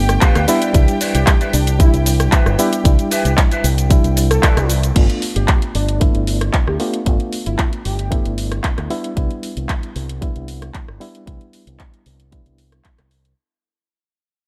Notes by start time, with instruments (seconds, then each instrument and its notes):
Already playing: fingered electric bass G1, reed electric piano A3 B3 D4, string section G4 G5
0.09 muted clean electric guitar stroke, cross-stick, closed hi-hat, shaker
0.21 clean electric guitar F4 G4 B4 F5, kick, clap, closed hi-hat, shaker
0.35 fingered electric bass D2, cross-stick, clap, closed hi-hat, shaker
0.48 reed electric piano G3 B3 D4 E4, clean electric guitar E4 B4 C5 D5, open hi-hat, shaker
0.62 closed hi-hat, shaker
0.73 fingered electric bass C2, reed electric piano G3 D4 E4, kick, closed hi-hat, shaker
0.88 closed hi-hat, shaker
1.01 clean electric guitar E4 B4 C5 D5, open hi-hat, shaker
1.15 fingered electric bass C2, analog synth lead G4, closed hi-hat, shaker
1.27 kick, clap, closed hi-hat, shaker
1.41 clean electric guitar E4 B4 C5 D5, closed hi-hat, shaker
1.53 fingered electric bass C2, analog synth lead D4, open hi-hat, shaker
1.67 muted clean electric guitar stroke, closed hi-hat, shaker
1.79 reed electric piano G3 D4 E4, analog synth lead E4, kick, closed hi-hat, shaker
1.94 fingered electric bass C2, closed hi-hat, shaker
2.06 muted clean electric guitar stroke, open hi-hat, shaker
2.19 muted clean electric guitar stroke, cross-stick, closed hi-hat, shaker
2.32 clean electric guitar E4 B4 C5 E5, kick, clap, closed hi-hat, shaker
2.46 fingered electric bass G1, cross-stick, shaker
2.59 reed electric piano G3 B3 D4 E4, analog synth lead G4, open hi-hat, shaker
2.73 closed hi-hat, shaker
2.84 fingered electric bass C2, reed electric piano G3 D4 E4, kick, closed hi-hat, shaker
2.99 closed hi-hat, shaker
3.11 clean electric guitar E4 B4 C5 E5, analog synth lead G4, open hi-hat, shaker
3.25 fingered electric bass C2, closed hi-hat, shaker
3.38 kick, clap, closed hi-hat, shaker
3.51 clean electric guitar E4 B4 C5 E5, closed hi-hat, shaker
3.64 fingered electric bass C2, open hi-hat, shaker
3.78 muted clean electric guitar stroke, closed hi-hat, shaker
3.90 reed electric piano G3 D4 E4, kick, closed hi-hat, shaker
4.04 fingered electric bass C2, closed hi-hat, shaker
4.16 muted clean electric guitar stroke, open hi-hat, shaker
4.30 analog synth lead A4, muted clean electric guitar stroke, cross-stick, closed hi-hat, shaker
4.43 clean electric guitar E4 B4 C5 D5, kick, clap, closed hi-hat, shaker
4.57 fingered electric bass C2, cross-stick, clap, closed hi-hat, shaker
4.70 open hi-hat, shaker
4.83 closed hi-hat, shaker
4.95 fingered electric bass G1, reed electric piano A3 B3 D4 F4, kick, closed hi-hat, crash
5.10 closed hi-hat
5.22 open hi-hat
5.36 fingered electric bass G1, analog synth lead G4, closed hi-hat
5.48 kick, clap, closed hi-hat
5.62 closed hi-hat
5.75 fingered electric bass G1, analog synth lead D4, open hi-hat
5.89 closed hi-hat
6.00 reed electric piano A3 B3 D4 E4, kick, closed hi-hat
6.15 fingered electric bass G1, closed hi-hat
6.27 open hi-hat
6.41 cross-stick, closed hi-hat
6.53 kick, clap, closed hi-hat
6.67 fingered electric bass D2, analog synth lead G4, cross-stick
6.80 reed electric piano A3 B3 D4 F4, analog synth lead G4, open hi-hat
6.94 closed hi-hat
7.06 fingered electric bass G1, reed electric piano A3 B3 D4 F4, kick, closed hi-hat
7.20 closed hi-hat
7.33 open hi-hat
7.46 fingered electric bass G1, analog synth lead E4, closed hi-hat
7.59 kick, clap, closed hi-hat
7.73 closed hi-hat
7.85 fingered electric bass G1, analog synth lead G4, open hi-hat
7.99 closed hi-hat
8.11 reed electric piano A3 B3 D4 E4, kick, closed hi-hat
8.26 fingered electric bass G1, closed hi-hat
8.38 open hi-hat
8.52 cross-stick, closed hi-hat
8.64 kick, clap, closed hi-hat
8.78 fingered electric bass D2, cross-stick, clap, closed hi-hat
8.90 reed electric piano G3 B3 D4 E4, open hi-hat
9.04 closed hi-hat
9.16 fingered electric bass C2, reed electric piano G3 B3 D4 E4, kick, closed hi-hat
9.31 closed hi-hat
9.43 open hi-hat
9.57 fingered electric bass C2, closed hi-hat
9.69 kick, clap, closed hi-hat
9.83 closed hi-hat
9.96 fingered electric bass C2, open hi-hat
10.09 closed hi-hat
10.21 reed electric piano G3 B3 D4 E4, kick, closed hi-hat
10.36 fingered electric bass C2, closed hi-hat
10.48 open hi-hat
10.62 cross-stick, closed hi-hat
10.74 kick, clap, closed hi-hat
10.88 fingered electric bass G1, cross-stick
11.00 reed electric piano G3 B3 D4 E4, open hi-hat
11.15 closed hi-hat
11.26 fingered electric bass C2, reed electric piano G3 B3 D4 E4, kick, closed hi-hat
11.41 closed hi-hat
11.53 open hi-hat
11.67 fingered electric bass C2, closed hi-hat
11.80 kick, clap, closed hi-hat
11.94 closed hi-hat
12.06 fingered electric bass C2, open hi-hat
12.20 closed hi-hat
12.31 reed electric piano G3 B3 D4 E4, kick, closed hi-hat
12.46 fingered electric bass C2, closed hi-hat
12.58 open hi-hat
12.72 cross-stick, closed hi-hat
12.84 kick, clap, closed hi-hat
12.98 fingered electric bass C2, cross-stick, clap, closed hi-hat
13.11 open hi-hat
13.25 closed hi-hat